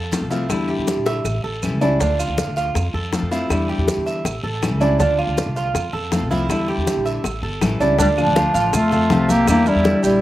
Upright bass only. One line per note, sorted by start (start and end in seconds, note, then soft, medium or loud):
0.00 0.23 F2 medium
0.21 0.48 C2 medium
0.49 0.77 E2 medium
0.78 0.87 E2 medium
0.97 1.24 A#1 medium
1.25 1.43 A1 medium
1.44 1.72 A1 medium
1.72 1.99 C#2 medium
2.00 2.27 D2 medium
2.28 2.37 D2 medium
2.48 2.74 D2 medium
2.75 2.93 F2 medium
2.94 3.21 F2 medium
3.22 3.49 F2 medium
3.50 3.77 E2 medium
3.78 3.87 E2 medium
3.97 4.24 E2 medium
4.25 4.43 A1 medium
4.43 4.72 A1 medium
4.72 4.99 C#2 medium
5.00 5.27 D2 medium
5.27 5.37 D2 medium
5.46 5.73 C2 medium
5.74 5.92 F2 medium
5.93 6.23 F2 medium
6.21 6.48 C2 medium
6.49 6.76 E2 medium
6.77 6.86 E2 medium
6.96 7.23 A#1 medium
7.24 7.42 A1 medium
7.43 7.60 G1 medium
7.61 7.78 A1 medium
7.80 7.97 C#2 medium
7.99 8.25 D2 loud
8.27 8.45 D2 medium
8.55 8.72 A1 medium
8.73 9.09 F2 loud
9.10 9.46 C2 medium
9.47 9.74 E2 loud
9.75 9.93 E2 medium
10.04 10.21 A#1 medium